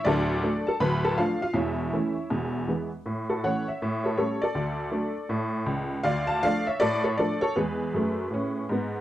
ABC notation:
X:1
M:4/4
L:1/8
Q:"Swing" 1/4=160
K:A
V:1 name="Honky-tonk piano"
[DAd]3 [Aa] [Bb] [Aa] [=F=f] [Ff] | [Ece]6- [Ece] z | z [FA] [cf] [ce]2 [Ac] [Ac] [Ad]- | [Ad]6- [Ad] z |
[d=f] [fa] [df] [ce] [Ad] [Ac] [Ad] [Ac] | [GB]6- [GB] z |]
V:2 name="Honky-tonk piano" clef=bass
[D,,,D,,]2 [F,A,D]2 [D,,,D,,]2 [=F,A,D]2 | [E,,,E,,]2 [E,A,C]2 [E,,,E,,]2 [E,G,B,]2 | A,,2 [E,A,C]2 A,,2 [=G,A,C]2 | D,,2 [F,A,D]2 A,,2 C,,2 |
D,,2 [=F,A,D]2 A,,2 [F,A,D]2 | [E,,G,]2 [F,,A,]2 [A,,C]2 [G,,B,]2 |]